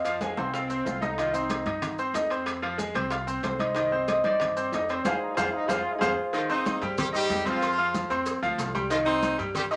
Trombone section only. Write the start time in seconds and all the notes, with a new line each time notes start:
0.54 C4
0.86 F4
1.03 D#4
1.18 F4
1.34 D#4
5.21 D#4
5.36 F4
5.54 D#4
5.70 F4
5.93 D#4
6.01 F4